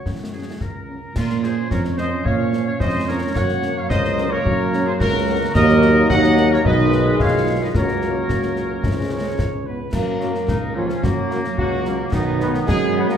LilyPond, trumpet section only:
\new Staff \with { instrumentName = "Trumpet section" } { \time 2/4 \key fis \major \tempo 4 = 109 fis'4. r8 | \key bes \minor bes'8 c''8 des''8 ees''8 | f''8. f''16 ees''8 des''8 | ges''8. f''16 ees''8. des''16~ |
des''8. c''16 bes'4 | \key fis \major dis''4 fis''8. cis''16 | dis''4 eis''8. dis''16 | cis''2~ |
cis''8 cis''4 b'8 | ais'4. eis'8 | fis'4 fis'4 | dis'4 gis'8. ais'16 | }